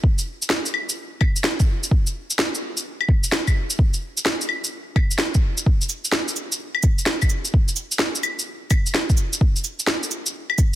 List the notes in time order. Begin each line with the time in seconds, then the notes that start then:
0.04 kick
0.18 shaker
0.42 shaker
0.50 snare
0.66 shaker
0.74 claves
0.89 shaker
1.21 kick, claves
1.36 shaker
1.44 snare
1.60 kick, shaker
1.83 shaker
1.91 kick
2.07 shaker
2.30 shaker
2.39 snare
2.55 shaker
2.77 shaker
3.01 claves
3.09 kick
3.24 shaker
3.32 snare
3.47 kick, claves, shaker
3.70 shaker
3.79 kick
3.94 shaker
4.17 shaker
4.26 snare
4.41 shaker
4.49 claves
4.64 shaker
4.96 kick, claves
5.11 shaker
5.18 snare
5.34 kick, shaker
5.58 shaker
5.66 kick
5.81 shaker
5.89 cabasa
6.05 shaker
6.12 snare
6.28 shaker
6.36 cabasa
6.52 shaker
6.75 claves
6.83 kick, cabasa
6.99 shaker
7.06 snare
7.22 kick, claves, shaker
7.30 cabasa
7.45 shaker
7.54 kick
7.68 shaker
7.76 cabasa
7.92 shaker
7.99 snare
8.15 shaker
8.23 cabasa, claves
8.39 shaker
8.71 kick, cabasa, claves
8.86 shaker
8.94 snare
9.10 kick, shaker
9.17 cabasa
9.33 shaker
9.41 kick
9.56 shaker
9.64 cabasa
9.79 shaker
9.87 snare
10.03 shaker
10.11 cabasa
10.26 shaker
10.50 claves
10.58 kick, cabasa